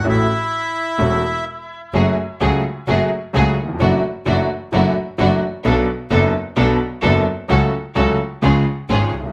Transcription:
X:1
M:4/4
L:1/16
Q:1/4=129
K:A
V:1 name="Bandoneon"
[Ee]12 z4 | [K:F#m] z16 | z16 | z16 |
z16 |]
V:2 name="String section"
z16 | [K:F#m] [A,FG]2 z2 [A,FG]2 z2 [A,FG]2 z2 [A,FG]2 z2 | [DEF]2 z2 [DEF]2 z2 [DEF]2 z2 [DEF]2 z2 | [B,DA]2 z2 [B,DA]2 z2 [B,DA]2 z2 [B,DA]2 z2 |
[CFA]2 z2 [CFA]2 z2 [C^EG]2 z2 [CEG]2 z2 |]
V:3 name="Grand piano" clef=bass
[A,,,A,,E,A,CF]2 z6 [E,,,E,,E,A,CF]2 z6 | [K:F#m] [F,,F,A,CG]2 z2 [C,,C,F,A,CG]2 z2 [F,,F,A,CG]2 z2 [C,,C,F,A,CG]2 z/2 ^D,,/2 E,,/2 ^E,,/2 | [F,,E,F,A,DF]2 z2 [F,,E,F,A,DF]2 z2 [F,,E,F,A,DF]2 z2 [F,,E,F,A,DF]2 z2 | [B,,,B,,F,B,DA]2 z2 [F,,,F,,F,B,DA]2 z2 [B,,,B,,F,B,DA]2 z2 [F,,,F,,F,B,DA]2 z2 |
[C,,C,F,A,CA]2 z2 [C,,C,F,A,CA]2 z2 [C,,C,^E,G,CG]2 z2 [G,,,G,,E,G,CG]2 z/2 B,,,/2 ^B,,,/2 z/2 |]
V:4 name="Double bass" clef=bass
A,,,2 z6 E,,,2 z6 | [K:F#m] F,,,2 z2 C,,2 z2 F,,,2 z2 C,,2 z2 | F,,,2 z2 F,,,2 z2 F,,,2 z2 F,,,2 z2 | B,,,2 z2 F,,,2 z2 B,,,2 z2 F,,,2 z2 |
C,,2 z2 C,,2 z2 C,,2 z2 G,,,2 ^B,,,2 |]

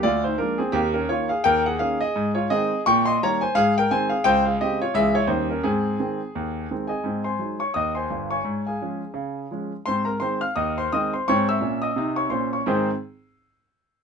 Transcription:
X:1
M:4/4
L:1/8
Q:"Swing" 1/4=171
K:Ab
V:1 name="Grand piano"
[F=d] [Ec] [=DB] [CA] [B,G] [_DB] [F_d] [Af] | [Bg] [A_g] [Af] [Ae]2 [Fd] [Ae]2 | [gd'] [ec'] [db] [ca] [Af] [Bg] [ca] [Af] | [cg] [Af] [Ge] [Fd] [A_f] [_Fd] [Ec] [DB] |
[CA]6- [CA] [Aea]- | [Aea] [cac']2 [dd'] [ee'] [cac']2 [dad']- | [dad'] [Afa]4- [Afa] z2 | [cc'] [Bb] [cc'] [ff'] [ee'] [cc'] [ee'] [cc'] |
[dd'] [_fd'_f']2 [ee']2 [dd'] [cc'] [dd'] | [A,,E,CEAcc'] z6 z |]
V:2 name="Grand piano" clef=bass
=D,,2 [F,A,B,]2 E,,2 [E,B,]2 | E,,2 [E,B,D]2 A,,2 [E,A,C]2 | B,,2 [E,G,B,]2 A,,2 [E,A,C]2 | D,,2 [D,A,C]2 [D,,_F,A,D]2 [E,,E,G,D]2 |
A,,2 [E,A,C]2 E,,2 [E,A,C]2 | [A,,C]2 [_G,A,E]2 E,,2 [=G,,,G,,]2 | A,,2 [F,A,D]2 D,2 [F,A,D]2 | [A,,C]2 [E,A,C]2 E,,2 [E,A,C]2 |
[A,,C]2 [B,,D]2 [C,E]2 [B,,D]2 | z8 |]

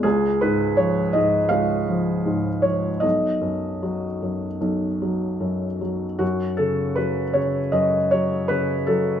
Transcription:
X:1
M:4/4
L:1/8
Q:1/4=78
K:F#dor
V:1 name="Felt piano"
G B c d ^e3 c | d6- d z | F A B c d c B A |]
V:2 name="Felt piano" clef=bass
C,, G,, ^E, G,, C,, E, G,, E, | B,,, F,, F, F,, B,,, F, F,, F, | F,, C, F, C, F,, F, C, F, |]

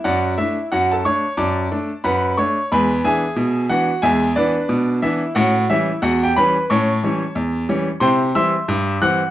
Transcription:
X:1
M:2/4
L:1/16
Q:"Swing 16ths" 1/4=90
K:Amix
V:1 name="Grand piano"
[Fdf]2 [Ee]2 [Ff] [Aa] [cc']2 | [dad']4 [Bfb]2 [cc']2 | [B^gb]2 [^Geg]4 [Ff]2 | [^Ge^g]2 [DBd]4 [Ee]2 |
[Ff]2 [Ee]2 [Ff] [Gg] [Bb]2 | [cac']4 z4 | [K:Clyd] [cgc']2 [ec'e']4 [ff']2 |]
V:2 name="Grand piano" clef=bass
F,,2 [A,D]2 F,,2 [A,D]2 | F,,2 [A,D]2 F,,2 [A,D]2 | [E,,^G,]2 [E,B,D]2 B,,2 [E,B,D]2 | [E,,^G,]2 [E,B,]2 B,,2 [E,B,D]2 |
[A,,C]2 [E,G,C]2 E,,2 [E,G,C]2 | [A,,C]2 [E,G,C]2 E,,2 [E,G,C]2 | [K:Clyd] [C,E]2 [E,G,C]2 G,,2 [E,G,C]2 |]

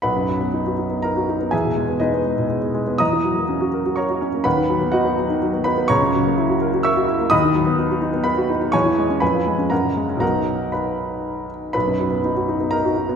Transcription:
X:1
M:3/4
L:1/16
Q:1/4=123
K:B
V:1 name="Grand piano"
[Bfb]8 [Aa]4 | [Geg]4 [DBd]8 | [dad']8 [cac']4 | [Bfb]4 [Fdf]6 [Bb]2 |
[cac']8 [ec'e']4 | [dbd']8 [Bb]2 z2 | [cgc']4 [Bgb]4 [Afa]4 | [Afa]4 [Bfb]6 z2 |
[Bb]8 [Aa]4 |]
V:2 name="Grand piano"
B,,, F,, F, B, D F D B, D F D B, | E,, B,, G, B, G, B, G, B,, G, B, G, B, | E,, E, F, A, C F A F A F C A, | D,, D, F, B, D B, F, D, F, B, D B, |
C,, C, F, A, E F A F A F E A, | D,, D, F, B, D F D B, D F D B, | E,, E, G, C ^E,, ^E, G, C F,, C, G, C | [B,,,F,B,D]12 |
B,,, F,, F, B, D F D B, D F D B, |]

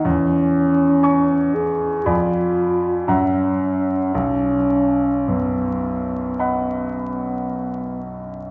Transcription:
X:1
M:4/4
L:1/8
Q:1/4=56
K:B
V:1 name="Grand piano"
E,,2 [gc']2 [=F,,=d_a_c']2 [^F,,ef^a]2 | B,,,2 F,,2 [dfb]4 |]
V:2 name="French horn"
C3 G =F2 C2 | C2 B,4- B, z |]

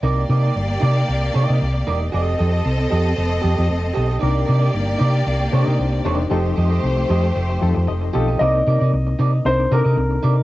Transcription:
X:1
M:4/4
L:1/16
Q:1/4=115
K:Cdor
V:1 name="Grand piano"
z16 | z16 | z16 | z16 |
e8 c2 B6 |]
V:2 name="Clean electric guitar"
[EBd] z [EBd] [EBd] z2 [EBd] z3 [EBd] [EBe] z2 [EBd] z | [GAe]2 [GAe] [GAe] z2 [GAe] z3 [GAe] [GAe] z2 [GAe] [GAe] | [EBd] z [EBd] [EBd] z2 [EBd] z3 [EBd] [EBe] z2 [EBd]2 | [GAe] z [GAe] [GAe] z2 [GAe] z6 z [GAe] [GAe] |
[EBd] z [EBd] [EBd] z2 [EBd] z3 [EBd] [EBe] z2 [EBd] z |]
V:3 name="String section"
[B,Gd]16 | [CAe]16 | [B,Gd]16 | [A,Gc]16 |
z16 |]
V:4 name="Reed electric piano"
z16 | z16 | [C,CDEB]6 z4 [C,CDEc]2 z2 [C,CDEc]2 | [F,CEGA]6 z4 [F,CEGA]2 e2 [F,CEGAf]2 |
[C,B,CEB]6 z2 [C,CDEB]2 [C,CDEAB]4 z2 |]
V:5 name="Fingered electric bass" clef=bass
C,,2 C,2 G,,,2 C,2 C,,2 C, C, C,,2 =E,,,2 | F,,,2 F,,2 C,,2 F,,2 F,,,2 F,, F,, F,,,2 =B,,,2 | C,,2 C,2 G,,,2 C,2 C,,2 C, C, C,,2 =E,,,2 | F,,,2 F,,2 C,,2 F,,2 F,,,2 F,, F,, F,,,2 =B,,,2 |
C,,2 C, C, C,,2 C,2 C,,2 C, C, C,,2 C,2 |]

